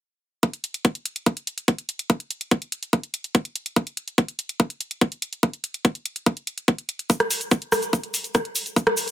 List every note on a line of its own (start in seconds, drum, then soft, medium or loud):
0.43 kick loud
0.43 closed hi-hat medium
0.53 closed hi-hat medium
0.64 closed hi-hat medium
0.74 closed hi-hat medium
0.85 kick loud
0.85 closed hi-hat medium
0.95 closed hi-hat medium
1.06 closed hi-hat medium
1.16 closed hi-hat medium
1.26 kick loud
1.26 closed hi-hat medium
1.37 closed hi-hat medium
1.47 closed hi-hat medium
1.58 closed hi-hat medium
1.68 kick loud
1.68 closed hi-hat medium
1.78 closed hi-hat medium
1.89 closed hi-hat medium
1.99 closed hi-hat medium
2.10 kick loud
2.10 closed hi-hat medium
2.20 closed hi-hat medium
2.31 closed hi-hat medium
2.41 closed hi-hat medium
2.51 kick loud
2.51 closed hi-hat medium
2.62 closed hi-hat soft
2.72 closed hi-hat medium
2.83 closed hi-hat medium
2.93 kick loud
2.93 closed hi-hat medium
3.03 closed hi-hat medium
3.14 closed hi-hat medium
3.24 closed hi-hat soft
3.35 kick loud
3.35 closed hi-hat medium
3.45 closed hi-hat medium
3.56 closed hi-hat medium
3.66 closed hi-hat medium
3.76 kick loud
3.76 closed hi-hat medium
3.87 closed hi-hat soft
3.97 closed hi-hat medium
4.08 closed hi-hat medium
4.18 kick loud
4.18 closed hi-hat medium
4.28 closed hi-hat soft
4.39 closed hi-hat medium
4.49 closed hi-hat medium
4.60 kick loud
4.60 closed hi-hat medium
4.70 closed hi-hat medium
4.81 closed hi-hat medium
4.91 closed hi-hat soft
5.01 kick loud
5.01 closed hi-hat medium
5.12 closed hi-hat medium
5.22 closed hi-hat medium
5.33 closed hi-hat medium
5.43 kick loud
5.43 closed hi-hat medium
5.53 closed hi-hat soft
5.64 closed hi-hat medium
5.74 closed hi-hat soft
5.85 kick loud
5.85 closed hi-hat medium
5.95 closed hi-hat soft
6.06 closed hi-hat medium
6.16 closed hi-hat medium
6.26 kick loud
6.26 closed hi-hat medium
6.37 closed hi-hat medium
6.47 closed hi-hat medium
6.58 closed hi-hat soft
6.68 kick loud
6.68 closed hi-hat medium
6.78 closed hi-hat soft
6.89 closed hi-hat medium
6.99 closed hi-hat soft
7.10 kick loud
7.10 closed hi-hat medium
7.10 cabasa medium
7.20 cross-stick soft
7.20 closed hi-hat soft
7.31 open hi-hat loud
7.31 cabasa loud
7.41 closed hi-hat medium
7.41 cabasa soft
7.51 kick loud
7.51 closed hi-hat medium
7.51 cabasa soft
7.62 closed hi-hat soft
7.72 cross-stick medium
7.72 open hi-hat medium
7.72 cabasa medium
7.82 closed hi-hat soft
7.82 cabasa soft
7.93 kick loud
7.93 closed hi-hat medium
7.93 cabasa medium
8.03 closed hi-hat medium
8.14 open hi-hat loud
8.14 cabasa loud
8.24 closed hi-hat soft
8.24 cabasa soft
8.35 kick loud
8.35 cross-stick soft
8.35 closed hi-hat medium
8.35 cabasa medium
8.45 closed hi-hat soft
8.55 open hi-hat medium
8.55 cabasa medium
8.66 closed hi-hat soft
8.66 cabasa soft
8.76 kick loud
8.76 closed hi-hat medium
8.76 cabasa medium
8.87 cross-stick medium
8.87 closed hi-hat medium
8.97 open hi-hat loud
8.97 cabasa medium
9.08 closed hi-hat medium